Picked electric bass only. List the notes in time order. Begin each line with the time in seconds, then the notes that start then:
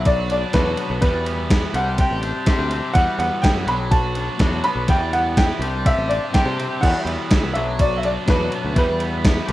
Already playing: B1
0.54 E2
0.90 B1
1.02 E2
1.13 E2
1.74 C2
2.11 A1
2.59 D2
2.95 E2
3.19 E2
3.44 D2
3.54 F#2
3.66 B1
4.40 E2
4.76 B1
4.89 E2
4.98 E2
5.59 C2
5.97 A1
6.45 C3
6.83 E2
7.05 E2
7.31 D2
7.44 C2
7.56 B1
8.28 E2
8.65 D2
8.76 E2
8.90 E2
9.49 C2